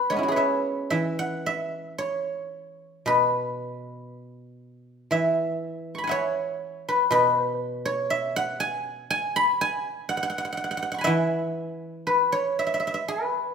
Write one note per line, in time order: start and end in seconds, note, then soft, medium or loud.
0.00 0.93 F#3 soft
0.00 0.31 B4 medium
0.00 0.37 E5 medium
0.10 0.29 G#3 soft
0.10 3.22 B3 soft
0.10 0.36 C#5 medium
0.16 3.06 C#4 soft
0.16 2.80 E4 soft
0.23 2.66 F#4 soft
0.28 2.55 G#4 soft
0.28 2.36 B4 soft
0.36 1.98 C#5 soft
0.36 0.90 E5 soft
0.90 4.11 E3 soft
0.90 1.46 E5 medium
1.19 2.79 F#5 medium
1.46 3.19 E5 medium
1.98 3.89 C#5 medium
3.06 5.11 B2 soft
3.06 5.12 B4 medium
5.11 8.12 E3 soft
5.11 6.09 E5 medium
5.95 7.33 B5 soft
5.95 7.21 C#6 soft
6.04 7.68 F#5 soft
6.04 7.53 G#5 soft
6.09 7.85 C#5 medium
6.09 7.81 E5 soft
6.89 7.11 B4 medium
7.11 10.10 B2 medium
7.11 9.17 B4 medium
7.85 9.76 C#5 medium
8.10 9.83 E5 medium
8.36 9.97 F#5 medium
8.60 9.10 G#5 medium
9.10 9.61 G#5 loud
9.36 10.71 B5 medium
9.61 11.01 G#5 medium
10.09 10.17 F#5 medium
10.17 10.22 F#5 medium
10.23 10.29 F#5 medium
10.30 10.38 F#5 medium
10.38 10.44 F#5 medium
10.45 10.52 F#5 soft
10.52 10.57 F#5 medium
10.57 10.64 F#5 medium
10.64 10.70 F#5 medium
10.71 10.77 F#5 medium
10.77 10.82 F#5 medium
10.82 10.91 F#5 medium
10.92 11.04 F#5 medium
10.92 12.20 C#6 soft
10.98 12.51 G#5 soft
10.98 12.34 B5 soft
11.04 13.54 E3 medium
11.04 12.59 E5 medium
11.04 12.65 F#5 medium
12.07 13.08 B4 medium
12.32 13.54 C#5 medium
12.59 12.66 E5 medium
12.67 12.73 E5 soft
12.74 12.79 E5 medium
12.80 12.87 E5 soft
12.87 12.94 E5 medium
12.94 13.54 E5 soft
13.08 13.54 B4 medium